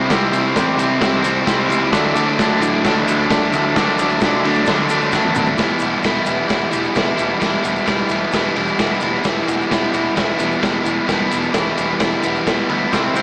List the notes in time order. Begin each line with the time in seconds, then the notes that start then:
Already playing: C4 E4
0.10 C2 C3 G3 C4 E4 G4 C5 E5, kick, snare, ride, shaker
0.32 C2 G3 C4 E4, ride, shaker
0.53 A1 C3 G3 C4 G4 C5 D5, kick, snare, ride, shaker
0.58 E4
0.77 C2 G3 C4 E4, ride, shaker
1.00 C2 C3 G3 C4 E4 G4 C5 E5, kick, snare, ride, shaker
1.22 C3 G3 C4 E4, ride, shaker
1.45 C2 C3 G3 C4 E4 G4 C5 E5, kick, snare, ride, shaker
1.68 C#2 G3 C4 E4, ride, shaker
1.92 D2 D3 F#3 A3 D4 F#4 A4 D5, kick, snare, ride, shaker
2.15 D2 F#3 A3 D4, ride, shaker
2.38 D2 D3 F#3 A3 D4 F#4 A4 D5, kick, snare, ride, shaker
2.60 A2 F#3 A3 D4, ride, shaker
2.84 D2 D3 F#3 A3 D4 F#4 A4 B4, kick, snare, ride, shaker
3.08 D3 F#3 A3 D4, ride, shaker
3.28 D2 D3 F#3 A3 F#4 A4 D5, kick, snare, ride, shaker
3.33 D4
3.53 D2 F#3 A3 D4, ride, shaker
3.75 D2 D3 F#3 A3 F#4 A4 D5, kick, snare, ride, shaker
3.80 D4
3.98 D2 A3 D4, ride, shaker
4.03 F#3
4.09 shaker
4.20 C2 D3 F#3 A3 F#4 A4 D5, kick, snare, ride, shaker
4.25 D4
4.44 D2 A3 D4, ride
4.48 F#3
4.55 shaker
4.65 D2 D3 F#4 A4 D5, kick, snare, ride, shaker
4.69 F#3 A3 D4
4.89 D3 F#3 A3 D4, ride, shaker
5.01 shaker
5.12 D2 D3 F#3 A3 D4 F#4 A4 B4, kick, snare, shaker
5.25 high tom
5.35 D2 F#3 A3 D4, mid tom, shaker
5.46 floor tom, shaker
5.58 E1 E3 G3 B3 E4, kick, snare, ride, shaker
5.79 E1 E4, ride, shaker
5.84 G3 B3
6.03 E1 E3 G3 B3 E4, kick, snare, ride, shaker
6.26 E1 G3 B3 E4, ride, shaker
6.47 E1 E3 G3 B3 E4, kick, snare, ride, shaker
6.71 E1 E3 G3 B3 E4, ride, shaker
6.84 shaker
6.95 E1 E3 G3 B3 E4, kick, snare, ride, shaker
7.15 E1 G3 B3 E4, ride, shaker
7.40 E1 E3 G3 B3 E4, kick, snare, ride, shaker
7.62 E1 G3 B3 E4, ride, shaker
7.76 shaker
7.85 E1 E3 G3 B3 E4, kick, snare, ride, shaker
8.09 E1 G3 B3 E4, ride, shaker
8.32 E1 E3 G3 B3 E4, kick, snare, ride, shaker
8.55 E1 E3 G3 B3 E4, ride
8.67 shaker
8.79 E1 E3 G3 B3 E4, kick, snare, ride, shaker
9.00 E1 G3 B3 E4, ride, shaker
9.24 E1 E3 G3 B3, kick, snare, ride, shaker
9.28 E4
9.48 E1 G3 B3 E4, ride, shaker
9.61 shaker
9.71 E1 E3 G3 B3 E4, kick, snare, ride, shaker
9.93 E1 G3 B3 E4, ride, shaker
10.16 E1 E3 G3 B3 E4, kick, snare, ride, shaker
10.38 E1 E3 G3 B3 E4, ride, shaker
10.52 shaker
10.60 E1 E3 G3 B3 E4, kick, snare, ride
10.64 shaker
10.83 E1 G3 B3 E4, ride, shaker
11.07 E1 E3 G3 B3 E4, kick, snare, ride, shaker
11.29 E1 G3 B3 E4, ride, shaker
11.43 shaker
11.53 E1 E3 G3 B3 E4, kick, snare, ride, shaker
11.77 E1 G3 B3 E4, ride, shaker
11.99 E1 E3 G3 B3 E4, kick, snare, ride, shaker
12.22 E1 E3 G3 B3 E4, ride, shaker
12.35 shaker
12.46 E1 E3 G3 B3 E4, kick, snare, ride, shaker
12.69 D2 G3 B3 E4, ride
12.92 C2 C3 G3 C4 E4 G4 C5 E5, kick, snare, ride, shaker
13.14 C2 C4 E4, ride, shaker
13.18 G3